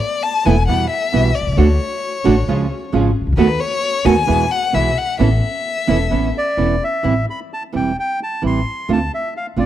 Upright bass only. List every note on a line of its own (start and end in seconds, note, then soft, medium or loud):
0.46 0.65 E1 medium
0.69 0.88 E2 medium
1.14 1.32 B1 medium
1.41 1.46 B1 soft
1.47 1.51 C2 medium
1.52 1.57 C#2 medium
1.58 1.77 D2 medium
2.26 2.45 A1 medium
2.48 2.67 C#2 medium
2.93 3.12 G#1 medium
3.21 3.26 C2 soft
3.27 3.32 C#2 medium
3.33 3.36 D2 medium
3.37 3.56 D#2 medium
4.05 4.24 D#2 medium
4.29 4.47 E2 medium
4.74 4.93 B1 medium
5.20 5.38 A1 medium
5.88 6.07 E1 medium
6.12 6.31 A1 medium
6.57 6.77 E1 medium
7.04 7.23 A1 medium
7.75 7.94 E1 soft
8.44 8.62 A1 medium
8.89 9.08 D2 medium
9.56 9.66 A1 medium